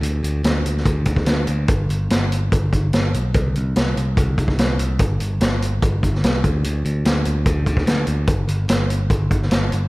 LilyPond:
<<
  \new Staff \with { instrumentName = "Picked electric bass" } { \clef bass \time 4/4 \key c \dorian \tempo 4 = 146 d,8 d,8 d,8 d,8 d,8 d,8 d,8 d,8 | g,,8 g,,8 g,,4 g,,8 g,,8 g,,8 b,,8 | c,8 c,8 c,8 c,8 c,8 c,8 c,8 c,8 | g,,8 g,,8 g,,4 g,,8 g,,8 c,8 d,8 |
d,8 d,8 d,8 d,8 d,8 d,8 d,8 d,8 | g,,8 g,,8 g,,4 g,,8 g,,8 g,,8 g,,8 | }
  \new DrumStaff \with { instrumentName = "Drums" } \drummode { \time 4/4 hh8 hh8 <hh sn>8 hh16 sn16 <hh bd>8 <hh bd>16 <bd sn>16 <hh sn>8 hh8 | <hh bd>8 hh8 <hh sn>8 hh8 <hh bd>8 <hh bd>8 <hh sn>8 hh8 | <hh bd>8 hh8 <hh sn>8 hh8 <hh bd>8 <hh bd>16 <bd sn>16 <hh sn>8 hh8 | <hh bd>8 hh8 <hh sn>8 hh8 <hh bd>8 <hh bd>16 sn16 <hh sn>8 <hh bd>8 |
hh8 hh8 <hh sn>8 hh8 <hh bd>8 <hh bd>16 <bd sn>16 <hh sn>8 hh8 | <hh bd>8 hh8 <hh sn>8 hh8 <hh bd>8 <hh bd>16 sn16 <hh sn>8 hh8 | }
>>